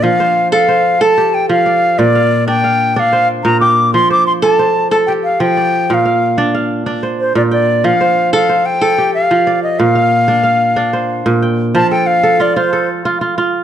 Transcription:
Already playing: kora D4 C5 D5
0.03 kora F3, flute F5
0.20 kora C5
0.52 kora A4, flute F5
0.68 kora C5
1.01 kora A4, flute A5
1.18 kora G4
1.34 flute G5
1.49 kora F3, flute F5
1.66 kora D5
1.98 kora A#2, flute D5
2.15 kora F5
2.48 kora D4 D5, flute G5
2.64 kora F5
2.95 kora D4 D5, flute G5
2.99 flute F5
3.13 kora C5
3.44 kora A#2, flute A#5
3.60 kora G5, flute D6
3.94 kora F3, flute C6
4.10 kora C5, flute D6
4.27 flute C6
4.42 kora A4, flute A5
4.59 kora C5
4.91 kora A4, flute A5
5.07 kora G4, flute G5
5.24 flute F5
5.40 kora F3, flute G5
5.57 kora D5
5.90 kora A#2, flute G5
5.94 flute F5
6.05 kora F5
6.38 kora D4 D5
6.54 kora F5
6.86 kora D4 D5
7.03 kora C5
7.20 flute C5
7.35 kora A#2, flute D5
7.51 flute D5, kora G5
7.84 kora F3, flute F5
8.01 kora C5
8.33 kora A4, flute F5
8.49 kora C5
8.66 flute G5
8.82 kora A4
8.98 kora G4
9.14 flute F5
9.31 kora F3
9.47 kora D5
9.63 flute D#5
9.79 kora A#2, flute F5
9.95 kora F5
10.28 kora D4 D5
10.43 kora F5
10.76 kora D4 D5
10.93 kora C5
11.26 kora A#2
11.42 kora G5
11.75 kora F3 C5, flute A5
11.91 kora A4, flute G5
12.06 flute F5
12.23 kora A4
12.40 kora F4, flute D5
12.56 kora F4, flute C5
12.73 kora A4
13.05 kora F4
13.21 kora F4
13.38 kora F4

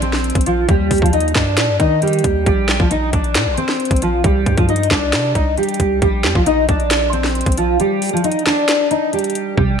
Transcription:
Already playing: 808-style bass A#1
0.02 steel-string acoustic guitar C4 C5, closed hi-hat
0.13 snare
0.24 closed hi-hat
0.30 closed hi-hat
0.35 808-style bass A#1, kick, closed hi-hat
0.41 closed hi-hat
0.46 steel-string acoustic guitar F3 F4, closed hi-hat
0.69 808-style bass D#2, steel-string acoustic guitar G3 G4, kick, closed hi-hat
0.91 808-style bass D#2, kick, closed hi-hat, open hi-hat
0.98 steel-string acoustic guitar F4, kick, closed hi-hat
1.03 steel-string acoustic guitar F3, closed hi-hat
1.13 steel-string acoustic guitar D#4 D#5, closed hi-hat
1.20 closed hi-hat
1.28 closed hi-hat
1.35 808-style bass G2, steel-string acoustic guitar D4 D5, kick, snare, clap
1.58 808-style bass A#2, snare, clap, closed hi-hat
1.69 808-style bass G2
1.80 808-style bass D#3, steel-string acoustic guitar D#4 D#5, kick, closed hi-hat
2.02 steel-string acoustic guitar G3 G4, closed hi-hat
2.08 closed hi-hat
2.13 closed hi-hat
2.19 closed hi-hat
2.24 808-style bass D#2, kick, closed hi-hat
2.46 808-style bass A#1, steel-string acoustic guitar G3 G4, kick, closed hi-hat
2.69 snare, clap
2.80 808-style bass A#1, steel-string acoustic guitar F3 F4, kick
2.91 steel-string acoustic guitar D#4 D#5, closed hi-hat
3.13 808-style bass A#1, steel-string acoustic guitar D4 D5, kick, closed hi-hat
3.24 closed hi-hat
3.35 808-style bass A#2, snare, clap, closed hi-hat
3.46 808-style bass A#1
3.57 steel-string acoustic guitar C4 C5, closed hi-hat
3.69 snare
3.80 closed hi-hat
3.85 closed hi-hat
3.91 808-style bass A#1, kick, closed hi-hat
3.96 closed hi-hat
4.02 steel-string acoustic guitar F3 F4, closed hi-hat
4.24 808-style bass C2, steel-string acoustic guitar G3 G4, kick, closed hi-hat
4.46 808-style bass G2, kick, closed hi-hat
4.57 steel-string acoustic guitar F3 F4, kick, closed hi-hat
4.69 steel-string acoustic guitar D#4 D#5, closed hi-hat
4.76 closed hi-hat
4.83 closed hi-hat
4.91 808-style bass C2, steel-string acoustic guitar D4 D5, kick, snare, clap
5.13 808-style bass C3, snare, clap, closed hi-hat
5.35 808-style bass C2, steel-string acoustic guitar D#4 D#5, kick, closed hi-hat
5.57 steel-string acoustic guitar G3 G4, closed hi-hat
5.63 closed hi-hat
5.69 closed hi-hat
5.74 closed hi-hat
5.80 808-style bass C2, kick, closed hi-hat
6.02 808-style bass A#1, steel-string acoustic guitar G3 G4, kick, closed hi-hat
6.24 808-style bass F2, snare, clap
6.35 808-style bass A#1, steel-string acoustic guitar F3 F4, kick
6.46 steel-string acoustic guitar D#4 D#5, closed hi-hat
6.69 808-style bass A#1, steel-string acoustic guitar D4 D5, kick, closed hi-hat
6.80 closed hi-hat
6.91 snare, clap, closed hi-hat
7.13 steel-string acoustic guitar C4 C5, closed hi-hat
7.24 snare
7.35 closed hi-hat
7.41 closed hi-hat
7.46 808-style bass A#1, kick, closed hi-hat
7.52 closed hi-hat
7.57 steel-string acoustic guitar F3 F4, closed hi-hat
7.80 steel-string acoustic guitar G3 G4, closed hi-hat
8.02 closed hi-hat, open hi-hat
8.09 steel-string acoustic guitar F4, closed hi-hat
8.14 steel-string acoustic guitar F3, closed hi-hat
8.24 steel-string acoustic guitar D#4 D#5, closed hi-hat
8.32 closed hi-hat
8.39 closed hi-hat
8.46 steel-string acoustic guitar D4 D5, snare, clap
8.69 snare, clap, closed hi-hat
8.91 steel-string acoustic guitar D#4 D#5, closed hi-hat
9.13 steel-string acoustic guitar G3 G4, closed hi-hat
9.19 closed hi-hat
9.24 closed hi-hat
9.30 closed hi-hat
9.35 closed hi-hat
9.57 808-style bass A#1, synth pluck C3, steel-string acoustic guitar G3 G4, kick

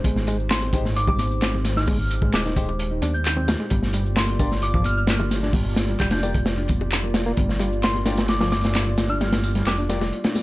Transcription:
Already playing: analog synth pad G#3 D#4 G4 C5
0.04 detuned saw bass G#1, reed electric piano G#3, kick, closed hi-hat, high conga, shaker
0.16 snare
0.27 reed electric piano G#3, closed hi-hat, open hi-hat, high bongo, shaker
0.39 shaker
0.50 reed electric piano C4, synth bell C6, snare, clap, closed hi-hat, shaker
0.62 closed hi-hat, high bongo, high conga
0.73 grand piano G#3 D#4 G4 C5, reed electric piano D#4, kick, closed hi-hat, open hi-hat, shaker
0.85 snare, shaker
0.96 synth bell D6, closed hi-hat, shaker
1.07 reed electric piano G3, synth bell D6, kick, high bongo
1.19 synth bell D6, closed hi-hat, open hi-hat, high conga, shaker
1.31 shaker
1.42 reed electric piano C4, snare, clap, closed hi-hat, high bongo, shaker
1.54 low conga
1.65 snare, closed hi-hat, open hi-hat, shaker
1.76 reed electric piano D#4, synth bell F6, snare, shaker
1.87 reed electric piano G#3, kick, open hi-hat, high bongo, high conga, shaker
2.11 closed hi-hat, open hi-hat, shaker
2.22 reed electric piano G#3, kick, high bongo, shaker
2.33 detuned saw bass D#1, reed electric piano G#3, synth bell D6, snare, clap, closed hi-hat, shaker
2.45 reed electric piano D#4, snare, high conga
2.56 reed electric piano G#3, grand piano G#3 D#4 G4 C5, kick, closed hi-hat, open hi-hat, shaker
2.68 high bongo, shaker
2.79 closed hi-hat, shaker
2.91 reed electric piano D#4
3.02 detuned saw bass D#2, reed electric piano D4, closed hi-hat, open hi-hat, high bongo, high conga, shaker
3.14 synth bell G6, shaker
3.25 synth bell G6, clap, closed hi-hat, shaker
3.37 reed electric piano C4, low conga
3.48 snare, closed hi-hat, open hi-hat, high bongo, shaker
3.60 reed electric piano G#3, shaker
3.70 detuned saw bass G1, reed electric piano G3, analog synth pad A#3 F4 D5, kick, closed hi-hat, high conga, shaker
3.83 snare
3.93 reed electric piano G3, closed hi-hat, open hi-hat, high bongo, shaker
4.06 shaker
4.16 reed electric piano A#3, synth bell C6, snare, clap, closed hi-hat, shaker
4.28 closed hi-hat, high conga
4.39 grand piano A#3 F4 G4 D5, reed electric piano D4, kick, closed hi-hat, open hi-hat, high bongo, shaker
4.52 snare, shaker
4.62 synth bell D6, closed hi-hat, shaker
4.74 reed electric piano F3, synth bell D6, kick, high bongo
4.84 synth bell F6, closed hi-hat, open hi-hat, high conga, shaker
4.97 synth bell F6, shaker
5.07 reed electric piano A#3, snare, clap, closed hi-hat, shaker
5.20 high bongo, low conga
5.31 snare, closed hi-hat, open hi-hat, shaker
5.43 reed electric piano D4, snare, shaker
5.53 reed electric piano G3, kick, open hi-hat, high bongo, high conga, shaker
5.76 snare, closed hi-hat, open hi-hat, shaker
5.88 reed electric piano G3, closed hi-hat, shaker
5.99 detuned saw bass F1, reed electric piano G3, synth bell G6, kick, clap, closed hi-hat, high bongo, shaker
6.11 reed electric piano D4, synth bell G6, snare, closed hi-hat, high conga
6.23 reed electric piano G3, grand piano A#3 F4 G4 D5, closed hi-hat, open hi-hat, shaker
6.34 kick, closed hi-hat, high bongo, shaker
6.46 snare, closed hi-hat, shaker
6.58 reed electric piano D4, closed hi-hat
6.68 reed electric piano G3, kick, closed hi-hat, open hi-hat, high conga, shaker
6.81 high bongo, shaker
6.91 clap, closed hi-hat, shaker
7.03 reed electric piano A#3, low conga
7.14 snare, closed hi-hat, open hi-hat, high bongo, shaker
7.26 reed electric piano A#3, shaker
7.37 detuned saw bass G1, reed electric piano G3, kick, closed hi-hat, high conga, shaker
7.49 snare
7.59 reed electric piano G3, closed hi-hat, open hi-hat, high bongo, shaker
7.72 shaker
7.83 reed electric piano A#3, synth bell C6, snare, clap, closed hi-hat, shaker
7.95 closed hi-hat, high bongo, high conga
8.06 grand piano A#3 F4 G4 D5, reed electric piano D4, snare, closed hi-hat, open hi-hat, shaker
8.18 snare, closed hi-hat, shaker
8.28 synth bell D6, snare, closed hi-hat, shaker
8.41 reed electric piano F3, synth bell D6, snare, closed hi-hat, high bongo
8.52 synth bell D6, snare, closed hi-hat, open hi-hat, high conga, shaker
8.64 snare, closed hi-hat, shaker
8.75 reed electric piano A#3, snare, clap, closed hi-hat, high bongo, shaker
8.87 low conga
8.98 snare, closed hi-hat, open hi-hat, shaker
9.10 reed electric piano D4, synth bell F6, shaker
9.21 reed electric piano G3, snare, closed hi-hat, high bongo, high conga, shaker
9.33 snare, closed hi-hat, open hi-hat
9.44 open hi-hat, shaker
9.55 reed electric piano G3, snare, closed hi-hat, high bongo, shaker
9.67 detuned saw bass F1, reed electric piano G3, synth bell D6, snare, clap, closed hi-hat, shaker
9.78 reed electric piano D4, high conga
9.89 reed electric piano G3, grand piano A#3 F4 G4 D5, snare, closed hi-hat, open hi-hat, shaker
10.01 snare, high bongo, shaker
10.13 closed hi-hat, shaker
10.24 reed electric piano D4, snare, closed hi-hat
10.35 reed electric piano G3, snare, open hi-hat, high bongo, high conga, shaker

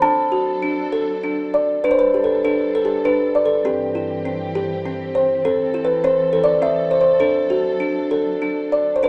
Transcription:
0.02 string section F#3 D4 A4, music box D4 A5
0.32 music box F#4
0.62 music box D4
0.92 music box A4
1.23 music box D4
1.54 music box D5
1.84 string section G3 D4 A4, music box D4 B4
1.91 music box C5
1.99 music box B4
2.14 music box G4
2.24 music box A4
2.44 music box D4 A4
2.75 music box A4
2.85 music box G4
3.05 music box D4 B4
3.35 music box D5
3.46 music box A4
3.65 string section G2 E3 C4 G4, music box C4 G4
3.95 music box E4
4.25 music box C4
4.55 music box G4
4.86 music box C4
5.15 music box C5
5.44 string section E3 A4, music box C4 A4
5.74 music box E4
5.85 music box B4
6.04 music box C4 C5
6.33 music box A4
6.44 music box D5
6.62 music box C4 E5
6.91 music box C5
7.01 music box C5
7.20 string section F#3 D4, music box D4 A4
7.50 music box F#4
7.80 music box D4
8.11 music box A4
8.42 music box D4
8.72 music box D5
8.96 music box C5
9.02 string section G3 B4, music box D4 B4

